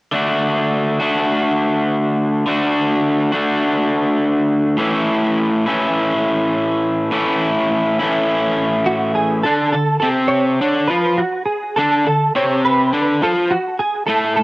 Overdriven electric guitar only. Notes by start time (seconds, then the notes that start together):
0.12 D3 A3 D4 F#4
1.00 D3 A3 D4 F#4
2.46 D3 A3 D4 F#4
3.32 D3 A3 D4 F#4
4.77 A2 E3 A3 C#4 E4
5.66 A2 E3 A3 C#4 E4
7.11 A2 E3 A3 C#4 E4
7.99 A2 E3 A3 C#4 E4
9.45 D3 D4
9.75 D3
10.02 C3 C4
10.61 D3 D4
10.90 F3 F4
11.78 D3 D4
12.07 D3
12.35 C3 C4
12.93 D3 D4
13.22 F3 F4
14.08 A2 A3
14.39 A2